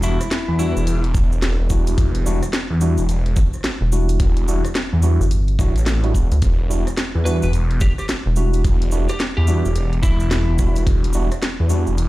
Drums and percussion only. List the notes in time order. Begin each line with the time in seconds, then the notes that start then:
0.03 cabasa
0.21 cross-stick, closed hi-hat, cabasa
0.31 snare, closed hi-hat, cabasa
0.59 cabasa
0.77 cabasa
0.87 closed hi-hat, cabasa
1.04 closed hi-hat
1.14 kick, cabasa
1.32 cabasa
1.42 snare, closed hi-hat, cabasa
1.70 kick, cabasa
1.87 closed hi-hat, cabasa
1.98 kick, closed hi-hat, cabasa
2.15 closed hi-hat
2.26 cabasa
2.43 cross-stick, closed hi-hat, cabasa
2.53 snare, closed hi-hat, cabasa
2.81 cabasa
2.97 cabasa
3.09 closed hi-hat, cabasa
3.26 closed hi-hat
3.36 kick, cabasa
3.53 cross-stick, cabasa
3.55 cross-stick
3.61 cross-stick
3.64 cross-stick, snare, closed hi-hat, cabasa
3.70 cross-stick
3.73 cross-stick
3.92 cabasa
4.09 closed hi-hat, cabasa
4.20 kick, closed hi-hat, cabasa
4.37 closed hi-hat
4.48 cabasa
4.65 cross-stick, closed hi-hat, cabasa
4.75 snare, closed hi-hat, cabasa
5.02 cabasa
5.21 cabasa
5.31 closed hi-hat, cabasa
5.48 closed hi-hat
5.59 kick, cabasa
5.76 closed hi-hat, cabasa
5.86 snare, closed hi-hat, cabasa
6.04 closed hi-hat
6.14 kick, cabasa
6.31 closed hi-hat, cabasa
6.42 kick, closed hi-hat, cabasa
6.71 cabasa
6.87 cross-stick, closed hi-hat, cabasa
6.97 snare, closed hi-hat, cabasa
7.26 cabasa
7.42 cabasa
7.53 closed hi-hat, cabasa
7.71 closed hi-hat
7.80 kick, cabasa
7.98 cross-stick, cabasa
8.00 cross-stick
8.05 cross-stick, cabasa
8.09 cross-stick, snare, closed hi-hat
8.14 cross-stick
8.18 cross-stick
8.36 cabasa
8.53 closed hi-hat, cabasa
8.64 kick, closed hi-hat, cabasa
8.82 closed hi-hat
8.91 cabasa
9.09 cross-stick, closed hi-hat, cabasa
9.19 snare, closed hi-hat, cabasa
9.47 cabasa
9.65 cabasa
9.75 closed hi-hat, cabasa
9.93 closed hi-hat
10.03 kick, cabasa
10.20 cabasa
10.31 snare, closed hi-hat, cabasa
10.58 kick, cabasa
10.76 closed hi-hat, cabasa
10.87 kick, closed hi-hat, cabasa
11.04 closed hi-hat
11.13 cabasa
11.31 cross-stick, closed hi-hat, cabasa
11.42 snare, closed hi-hat, cabasa
11.69 cabasa
11.87 cabasa
11.97 closed hi-hat, cabasa